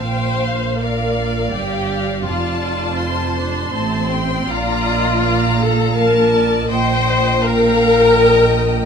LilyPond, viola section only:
\new Staff \with { instrumentName = "Viola section" } { \time 3/4 \key bes \major \tempo 4 = 82 c''4 bes'4 g'4 | f'4. d'8 c'4 | f'4. a'8 bes'4 | c''4 bes'2 | }